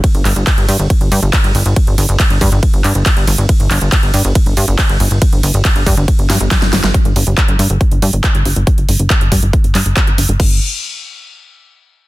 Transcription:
<<
  \new Staff \with { instrumentName = "Analog synth bass" } { \clef bass \time 4/4 \key c \dorian \tempo 4 = 139 r16 g,,16 g,,16 g,,16 r16 g,,16 g,16 g,,16 r16 g,,16 g,16 g,,16 r16 g,,16 g,,16 g,,16 | r16 g,,16 g,,16 g,,16 r16 g,,16 g,16 g,,16 r16 g,,16 g,16 g,,16 r16 g,,16 g,,16 g,,16 | r16 g,,16 g,,16 g,,16 r16 g,,16 g,16 g,,16 r16 g,,16 g,16 g,,16 r16 g,,16 g,,16 g,,16 | r16 g,,16 g,,16 g,,16 r16 g,,16 g,16 g,,16 r16 g,,16 g,16 g,,16 r16 g,,16 g,,16 g,,16 |
r16 g,,16 g,,16 g,,16 r16 g,,16 g,16 g,,16 r16 g,,16 g,16 g,,16 r16 g,,16 g,,16 g,,16 | r16 g,,16 g,,16 g,,16 r16 g,,16 g,16 g,,16 r16 g,,16 g,16 g,,16 r16 g,,16 g,,16 g,,16 | g,,8 r2. r8 | }
  \new DrumStaff \with { instrumentName = "Drums" } \drummode { \time 4/4 <hh bd cymr>16 hh16 <hc hho>16 hh16 <hc hh bd cymr>16 hh16 hho16 hh16 <hh bd cymr>16 hh16 hho16 hh16 <hc hh bd cymr>16 hh16 hho16 hh16 | <hh bd cymr>16 hh16 hho16 hh16 <hc hh bd cymr>16 hh16 <hho bd>16 hh16 <hh bd cymr>16 hh16 <hc hho>16 hh16 <hc hh bd cymr>16 hh16 hho16 hh16 | <hh bd cymr>16 hh16 <hc hho>16 hh16 <hc hh bd cymr>16 hh16 hho16 hh16 <hh bd cymr>16 hh16 hho16 hh16 <hc hh bd cymr>16 hh16 hho16 hh16 | <hh bd cymr>16 hh16 hho16 hh16 <hc hh bd cymr>16 hh16 <hho bd>16 hh16 <hh bd cymr>16 hh16 <hho sn>16 hh16 <hc hh bd cymr sn>16 <hh sn>16 <hho sn>16 <hh sn>16 |
<hh bd>16 hh16 hho16 hh16 <hc hh bd>16 hh16 hho16 hh16 <hh bd>16 hh16 hho16 hh16 <hc hh bd>16 hh16 hho16 hh16 | <hh bd>16 hh16 hho16 hh16 <hc hh bd>16 hh16 <hho bd>16 hh16 <hh bd>16 hh16 <hc hho>16 hh16 <hc hh bd>16 hh16 hho16 hh16 | <cymc bd>4 r4 r4 r4 | }
>>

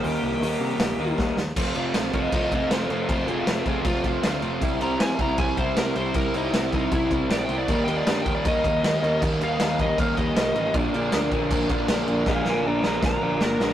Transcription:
<<
  \new Staff \with { instrumentName = "Lead electric guitar" } { \time 4/4 \key f \major \tempo 4 = 157 << { r1 | r4. <c'' ees''>8 <c'' ees''>8 <c'' ees''>8 <a' c''>8 <a' c''>8 | <a' c''>8 <f' aes'>8 <f' aes'>8 <f' aes'>8 f'8 r4. | r8 bes''8 aes''8 bes''8 aes''8 c''8 bes'8 c''8 |
bes'8 ees'8 r8 ees'8 e'8 r8 \tuplet 3/2 { d''8 g''8 d''8 } | \tuplet 3/2 { d''8 g''8 d''8 d''8 g''8 d''8 } ees''2 | r8 f''4 ees''8 f''8 ees''8 ees''4 | r1 |
<f'' aes''>8 <f'' aes''>8 <d'' bes''>8 <d'' bes''>8 bes''2 | } \\ { g'2. r4 | r1 | r1 | r1 |
r1 | r1 | r1 | r1 |
r2 r8 d''8 bes'4 | } >> }
  \new Staff \with { instrumentName = "Overdriven electric guitar" } { \time 4/4 \key f \major <ees g bes ees'>4 <ees g bes ees'>4. <ees g bes ees'>4 r8 | <f a c' f'>8 <f a c' f'>8 <f a c' f'>8 <f a c' f'>8 <f a c' f'>8 <f a c' f'>8 <f a c' f'>8 <f a c' f'>8 | <f a c' f'>8 <f a c' f'>8 <f a c' f'>8 <f a c' f'>8 <f a c' f'>8 <f a c' f'>8 <f a c' f'>8 <f a c' f'>8 | <c g c' e'>8 <c g c' e'>8 <c g c' e'>8 <c g c' e'>8 <c g c' e'>8 <c g c' e'>8 <c g c' e'>8 <c g c' e'>8 |
<c g c' e'>8 <c g c' e'>8 <c g c' e'>8 <c g c' e'>8 <c g c' e'>8 <c g c' e'>8 <c g c' e'>8 <c g c' e'>8 | <ees g bes ees'>8 <ees g bes ees'>8 <ees g bes ees'>8 <ees g bes ees'>8 <ees g bes ees'>8 <ees g bes ees'>8 <ees g bes ees'>8 <ees g bes ees'>8 | <ees g bes ees'>8 <ees g bes ees'>8 <ees g bes ees'>8 <ees g bes ees'>8 <ees g bes ees'>8 <ees g bes ees'>8 <ees g bes ees'>8 <ees g bes ees'>8 | <bes, d f bes d'>8 <bes, d f bes d'>8 <bes, d f bes d'>8 <bes, d f bes d'>8 <bes, d f bes d'>8 <bes, d f bes d'>8 <bes, d f bes d'>8 <bes, d f bes d'>8 |
<bes, d f bes d'>8 <bes, d f bes d'>8 <bes, d f bes d'>8 <bes, d f bes d'>8 <bes, d f bes d'>8 <bes, d f bes d'>8 <bes, d f bes d'>8 <bes, d f bes d'>8 | }
  \new Staff \with { instrumentName = "Picked electric bass" } { \clef bass \time 4/4 \key f \major ees,8 c,8 ees,8 c8 bes,,8 ees,8 ees,8 ees,8 | f,,8 f,,8 bes,,8 f,,8 f,,8 f,,8 f,,8 f,,8 | f,,8 f,,8 f,,8 f,,8 f,,8 f,,8 d,8 f,,8 | c,8 c,8 f,8 c,8 c,8 c,8 c,8 c,8 |
c,8 c,8 c,8 c,8 c,8 c,8 bes,,8 c,8 | ees,8 ees,8 g,8 ees,8 ees,8 ees,8 ees,8 ees,8 | ees,8 ees,8 ees,8 ees,8 ees,8 ees,8 c,8 a,,8 | bes,,8 bes,,8 d,8 bes,,8 bes,,8 bes,,8 bes,,8 bes,,8 |
bes,,8 bes,,8 bes,,8 bes,,8 bes,,8 bes,,8 g,,8 bes,,8 | }
  \new DrumStaff \with { instrumentName = "Drums" } \drummode { \time 4/4 hho4 hho4 <hho sn>4 <bd sn>8 sn8 | <cymc bd>8 cymc8 <cymc sn>8 <cymc bd>8 <cymc bd>8 <cymc bd>8 <cymc sn>8 cymc8 | <cymc bd>8 cymc8 <cymc sn>8 <cymc bd>8 <cymc bd>8 <cymc bd>8 <cymc sn>8 cymc8 | <cymc bd>8 cymc8 <cymc sn>8 <cymc bd>8 <cymc bd>8 <cymc bd>8 <cymc sn>8 cymc8 |
<cymc bd>8 cymc8 <cymc sn>8 <cymc bd>8 <cymc bd>8 <cymc bd>8 <cymc sn>8 cymc8 | <cymc bd>8 cymc8 <cymc sn>8 <cymc bd>8 <cymc bd>8 <cymc bd>8 <cymc sn>8 cymc8 | <cymc bd>8 cymc8 <cymc sn>8 <cymc bd>8 <cymc bd>8 <cymc bd>8 <cymc sn>8 cymc8 | <cymc bd>8 cymc8 <cymc sn>8 <cymc bd>8 <cymc bd>8 <cymc bd>8 <cymc sn>8 cymc8 |
<bd sn>8 sn8 r8 sn8 <bd sn>4 sn8 sn8 | }
>>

